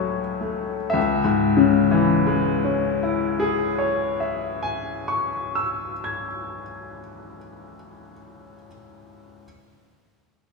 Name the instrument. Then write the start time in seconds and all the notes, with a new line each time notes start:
upright piano
Already playing: C#2 A2 F#3 A3
0.41 A3
0.90 C#2 E5
1.24 G#2
1.57 C#3
1.91 E3
2.27 G#3
2.65 C#4
3.03 E4
3.40 G#4
3.78 C#5
4.20 E5
4.63 G#5
5.08 C#6
5.55 E6
6.04 G#6